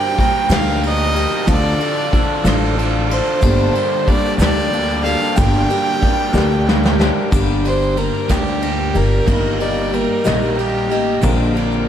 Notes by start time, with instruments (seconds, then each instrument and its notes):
Already playing: steel-string acoustic guitar G3 A#3 G4, overdriven electric guitar G3 D4 A#4, fiddle G5, tonewheel organ G5 A#5
0.17 steel-string acoustic guitar G3 A#3 G4, overdriven electric guitar D4 A#4, kick, ride
0.49 upright bass D2, steel-string acoustic guitar G2 D3 G3 A#3 G4, overdriven electric guitar A#4, fiddle F5, snare, ride, shaker
0.54 overdriven electric guitar D4
0.81 steel-string acoustic guitar G3 A#3 G4, overdriven electric guitar D4, ride
0.86 overdriven electric guitar A#4, fiddle D#5
1.14 steel-string acoustic guitar G3 A#3 G4, overdriven electric guitar D4 A#4, ride
1.31 shaker
1.47 upright bass D2, steel-string acoustic guitar D3 F3 D4 F4 A4, tonewheel organ F5 D6, kick, ride, shaker
1.51 fiddle D5
1.80 steel-string acoustic guitar D4 F4 A4, ride
2.11 overdriven electric guitar D3, steel-string acoustic guitar F3 D4 F4 A4, kick, ride
2.44 upright bass A1, steel-string acoustic guitar D3 F3 D4 F4 A4, snare, ride, shaker
2.76 overdriven electric guitar D3, steel-string acoustic guitar F3 D4 F4 A4, ride
3.10 steel-string acoustic guitar D4 F4 A4, fiddle C5, ride
3.26 shaker
3.41 upright bass G1, steel-string acoustic guitar G2 D3 G3 A#3 D4 A4, overdriven electric guitar G4, tonewheel organ G5 A5, kick, crash, shaker
3.74 steel-string acoustic guitar G3 A#3 D4 A4, overdriven electric guitar G4, ride
4.06 steel-string acoustic guitar G3 A#3 D4 A4, overdriven electric guitar G4, fiddle D5, kick, ride
4.38 upright bass D2, steel-string acoustic guitar G2 D3 G3 A#3 D4 A4, overdriven electric guitar G4, fiddle D5, ride, shaker
4.42 snare
4.72 steel-string acoustic guitar G3 A#3 D4 A4, overdriven electric guitar G4, ride
5.03 steel-string acoustic guitar G3 A#3 D4 A4, overdriven electric guitar G4, fiddle F5, ride
5.21 shaker
5.29 fiddle F5
5.36 upright bass G1, steel-string acoustic guitar G2 D3 G3 A#3 D4 G4, tonewheel organ A#4 D6, fiddle G5, kick, ride, shaker
5.53 shaker
5.69 steel-string acoustic guitar G3 A#3 D4 G4, ride, shaker
6.01 steel-string acoustic guitar G3 A#3 D4 G4, kick, ride
6.33 upright bass D2, steel-string acoustic guitar G2 D3 G3 A#3 D4 G4, snare, shaker
6.51 shaker
6.66 steel-string acoustic guitar G3 A#3 D4 G4, snare
6.83 snare, shaker
6.99 steel-string acoustic guitar G3 A#3 D4 G4, snare, shaker
7.31 upright bass G1, steel-string acoustic guitar G2 D3 G3 A#3 D4 G4, tonewheel organ A#4 G5 D6, kick, crash, shaker
7.65 steel-string acoustic guitar G3 A#3 D4 G4, fiddle C5, ride, shaker
7.82 shaker
7.97 overdriven electric guitar G2 D3, steel-string acoustic guitar G3 A#3 D4 G4, fiddle A#4, ride
8.29 upright bass D2, steel-string acoustic guitar G2 D3 G3 A#3 D4 G4, fiddle G4, kick, snare, ride, shaker
8.47 shaker
8.61 steel-string acoustic guitar G3 A#3 D4 G4, ride
8.94 upright bass G1, overdriven electric guitar G2 D3, steel-string acoustic guitar G3 A#3 D4 G4, fiddle A#4, ride, shaker
9.26 upright bass G1, steel-string acoustic guitar G2 D#3 G3 A#3 D#4 G4, tonewheel organ A#5, kick, ride, shaker
9.59 steel-string acoustic guitar G3 A#3 D#4 G4, fiddle D5, ride, shaker
9.77 shaker
9.91 steel-string acoustic guitar G3 A#3 D#4 G4, fiddle A#4, ride
10.24 upright bass A#1, steel-string acoustic guitar G2 D#3 G3 A#3 D#4 G4, snare, ride, shaker
10.42 shaker
10.56 steel-string acoustic guitar G3 A#3 D#4 G4, fiddle G4, ride
10.90 upright bass A1, steel-string acoustic guitar G3 A#3 D#4 G4, ride, shaker
11.21 upright bass A#1, steel-string acoustic guitar A#2 D3 F3 A#3 D4 A#4, tonewheel organ A#4 F5 D6, kick, crash, shaker
11.54 steel-string acoustic guitar F3 A#3 D4 A#4, ride, shaker
11.72 shaker